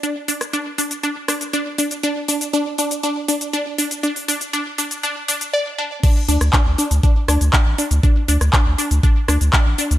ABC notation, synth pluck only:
X:1
M:4/4
L:1/8
Q:1/4=120
K:C
V:1 name="Synth pluck"
D D D D D D D D | D D D D D D D D | D D D D D D d D | D D D D D D D D |
D D D D D D D D |]